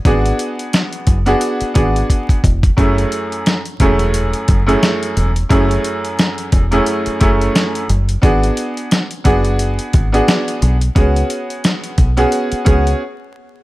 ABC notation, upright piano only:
X:1
M:4/4
L:1/16
Q:"Swing 16ths" 1/4=88
K:F#m
V:1 name="Upright piano"
[B,DFG]6 z [B,DFG]3 [B,DFG]4 z2 | [F,,A,CEG]4- [F,,A,CEG] z [F,,A,CEG]4- [F,,A,CEG] [F,,A,CEG]4 z | [F,,A,CEG]6 z [F,,A,CEG]3 [F,,A,CEG]4 z2 | [B,DFG]4- [B,DFG] z [B,DFG]4- [B,DFG] [B,DFG]4 z |
[B,CFG]6 z [B,CFG]3 [B,CFG]2 z4 |]